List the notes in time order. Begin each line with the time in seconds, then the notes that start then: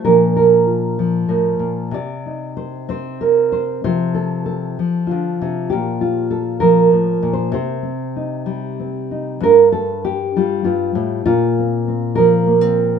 0.05 A#2 F3 D4 F4 A#4
0.36 A#4
0.67 F4
0.99 F3
1.28 A2 A#4
1.59 A#2
1.91 C3 D5
2.26 D#4
2.57 C5
2.89 C4 C5
3.21 A#4
3.52 C5
3.84 C3 F3 F4 A4 C5
4.14 A4
4.46 A4
4.79 F3
5.07 F4
5.11 D3
5.41 C3
5.70 A#2 G4
6.01 F4
6.31 A4
6.60 F3 A#4
6.92 A2
7.23 A#2
7.33 C5
7.52 C3 C5
7.83 C4
8.16 D#4
8.46 G3
8.80 C4
9.11 D#4
9.40 G2 A#4
9.72 A4
10.05 G4
10.36 G3 F4
10.64 G2 F4
10.95 A2
11.26 A#2 F4
11.59 C4
11.88 C4
12.15 F3 A#4
12.47 A#3
12.61 C4